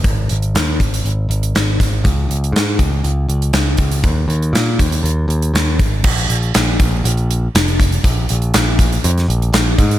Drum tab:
CC |----------------|----------------|----------------|x---------------|
HH |x-xxx-xxx-xxx-x-|x-xxx-x-x-xxx-xx|x-xxx-xxx-xxx-x-|-xxxx-x-xxx-xxxx|
SD |----o-------o-o-|----o-------o---|----o-------o---|----o-------o---|
BD |o-----o-------o-|o-----o-------o-|o-----o-------o-|o-----o-------o-|

CC |----------------|
HH |x-xxx-xxxxxxx-xx|
SD |----o----o--o---|
BD |o-----o-------o-|